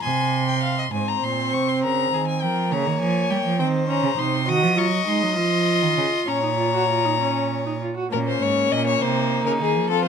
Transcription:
0.03 cello C3, violin G#5 C6
0.48 violin G5
0.63 violin F5
0.79 violin D#5
0.93 cello G#2, viola C4, violin C5 G#5
1.08 violin A#5
1.23 cello A#2, violin C6
1.53 cello C3, violin C#6
1.69 violin C6
1.83 cello C#3, violin A#4 A#5
2.12 cello D#3, violin G#4
2.27 violin G#5
2.42 cello F3, violin A#4 G5
2.71 cello C#3, viola A#3, violin C#5 A#5
2.86 cello D#3
3.01 cello F3, violin G#5
3.30 cello G3, violin G5
3.45 cello F3
3.59 cello D#3, viola C4, violin C5 G5
3.88 viola C#4, violin A#5
4.03 cello C#3
4.18 cello C3, viola D#4, violin C6
4.47 cello D#3, viola F#4, violin D#5 D#6
4.63 cello F3
4.77 cello F#3, viola F4, violin C#6
5.06 cello G#3, viola D#4, violin C6
5.22 cello F#3
5.36 cello F3, viola F4, violin C6
5.82 cello D#3
5.97 cello C#3
6.27 cello A#2, viola C#4, violin C#5 A#5
6.43 viola D#4
6.58 viola F4
6.74 viola F#4
6.89 viola F4
7.05 viola D#4
7.20 viola C#4
7.66 viola D#4
7.82 viola F4
7.97 viola F#4
8.12 cello A#2, viola A#3, violin C#4 A#4
8.28 violin C5
8.42 cello G#2, violin C#5
8.72 cello A#2, violin D#5
8.87 violin C#5
9.01 cello C3, violin D#4 C5
9.46 cello C#3, violin A#4
9.60 cello D#3, violin G#4
9.75 cello F3
9.90 viola C4, violin F4 A4

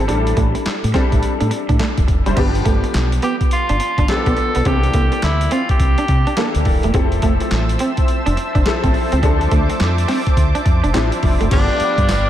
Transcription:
Already playing: grand piano F3 B4
0.00 grand piano C4 E4 A4
0.08 fingered electric bass A1, grand piano G3 D4 E4 A4, clean electric guitar D4, closed hi-hat
0.27 closed hi-hat
0.37 fingered electric bass A1, clean electric guitar A3, kick, closed hi-hat
0.55 muted clean electric guitar stroke, closed hi-hat
0.66 muted fingered electric bass stroke, snare, clap, closed hi-hat
0.84 fingered electric bass A2, closed hi-hat
0.94 grand piano G3 D4 E4 A4, clean electric guitar C4, kick, snare, closed hi-hat
1.12 fingered electric bass A1, kick, closed hi-hat
1.23 closed hi-hat
1.40 fingered electric bass A2, clean electric guitar D4, closed hi-hat
1.51 muted clean electric guitar stroke, closed hi-hat
1.69 fingered electric bass A2, clean electric guitar D4, kick, closed hi-hat
1.79 clean electric guitar A3, snare, clap, closed hi-hat
1.98 fingered electric bass E1, kick, closed hi-hat
2.08 fingered electric bass F1, muted clean electric guitar stroke, kick, closed hi-hat
2.26 fingered electric bass F#1, grand piano G3 D4 E4 C5, clean electric guitar G3, closed hi-hat
2.37 fingered electric bass G1, grand piano F3 B3 D4 G4, clean electric guitar B3, kick, closed hi-hat, crash
2.55 closed hi-hat
2.65 fingered electric bass G1, clean electric guitar A3, kick, closed hi-hat
2.84 muted clean electric guitar stroke, closed hi-hat
2.94 fingered electric bass B1, snare, clap, closed hi-hat
3.12 closed hi-hat
3.22 clean electric guitar B3, tenor saxophone G4, closed hi-hat
3.41 kick, closed hi-hat
3.51 tenor saxophone F4, closed hi-hat
3.69 fingered electric bass G1, clean electric guitar D4, closed hi-hat
3.80 muted clean electric guitar stroke, closed hi-hat
3.98 fingered electric bass G1, clean electric guitar D4, kick, closed hi-hat
4.08 grand piano F3 B3 D4 G4, tenor saxophone A4, muted fingered electric bass stroke, snare, clap, closed hi-hat
4.26 fingered electric bass B1, clean electric guitar B3, kick, closed hi-hat
4.37 muted clean electric guitar stroke, closed hi-hat
4.55 fingered electric bass B1, clean electric guitar B3, closed hi-hat
4.65 fingered electric bass C2, grand piano E3 A#3 D4 A4, clean electric guitar C4, tenor saxophone G4, kick, closed hi-hat
4.83 closed hi-hat
4.93 fingered electric bass C2, clean electric guitar A#3, kick, closed hi-hat
5.12 muted clean electric guitar stroke, closed hi-hat
5.22 fingered electric bass D2, tenor saxophone E4, snare, clap, closed hi-hat
5.41 closed hi-hat
5.51 clean electric guitar C4, tenor saxophone F4, closed hi-hat
5.69 tenor saxophone G4, kick, closed hi-hat
5.80 fingered electric bass C2, kick, closed hi-hat
5.98 clean electric guitar D4, closed hi-hat
6.08 fingered electric bass C3, muted clean electric guitar stroke, kick, closed hi-hat
6.27 clean electric guitar D4, closed hi-hat
6.37 grand piano E3 A#3 D4 A4, clean electric guitar A#3, snare, clap, closed hi-hat
6.55 fingered electric bass D2, closed hi-hat
6.65 fingered electric bass D#1, muted clean electric guitar stroke, kick, open hi-hat
6.83 fingered electric bass E1, clean electric guitar A3, closed hi-hat
6.94 fingered electric bass F1, grand piano F3 C4 E4 A4, clean electric guitar C4, analog synth pad C5 E5 A5 E6, kick, closed hi-hat
7.12 closed hi-hat
7.22 fingered electric bass F1, clean electric guitar A3, kick, closed hi-hat
7.40 muted clean electric guitar stroke, closed hi-hat
7.51 fingered electric bass A1, snare, clap, closed hi-hat
7.69 closed hi-hat
7.79 clean electric guitar C4, closed hi-hat
7.97 kick, closed hi-hat
8.08 closed hi-hat
8.26 fingered electric bass F1, clean electric guitar D4, closed hi-hat
8.37 muted clean electric guitar stroke, closed hi-hat
8.55 fingered electric bass F1, clean electric guitar D4, kick, closed hi-hat
8.66 grand piano F3 C4 E4 A4, snare, clap, closed hi-hat
8.84 fingered electric bass A1, clean electric guitar C4, kick, closed hi-hat
8.94 muted clean electric guitar stroke, open hi-hat
9.12 fingered electric bass C#2, clean electric guitar C4, closed hi-hat
9.23 fingered electric bass D2, grand piano F3 C4 D4 A4, clean electric guitar D4, analog synth pad D6, kick, closed hi-hat
9.41 closed hi-hat
9.51 fingered electric bass D2, clean electric guitar A3, kick, closed hi-hat
9.70 muted clean electric guitar stroke, closed hi-hat
9.80 fingered electric bass F2, snare, clap, closed hi-hat
9.98 closed hi-hat
10.08 clean electric guitar C4, snare, open hi-hat
10.27 kick, closed hi-hat
10.37 fingered electric bass D2, kick, closed hi-hat
10.55 clean electric guitar D4, closed hi-hat
10.65 fingered electric bass F2, muted clean electric guitar stroke, kick, closed hi-hat
10.84 fingered electric bass F1, clean electric guitar D4, closed hi-hat
10.94 fingered electric bass A1, grand piano F3 C4 D4 E4, clean electric guitar C4, snare, clap, closed hi-hat
11.12 closed hi-hat
11.23 fingered electric bass F1, muted clean electric guitar stroke, kick, open hi-hat
11.41 fingered electric bass F#1, clean electric guitar A3, closed hi-hat
11.51 fingered electric bass G1, grand piano F3 B3 D4 G4, tenor saxophone D4, analog synth pad B4 F5 G5 D6, kick, closed hi-hat, crash, tambourine
11.80 muted fingered electric bass stroke, closed hi-hat
11.98 fingered electric bass G2, kick, closed hi-hat
12.09 fingered electric bass G1, snare, clap, closed hi-hat, tambourine

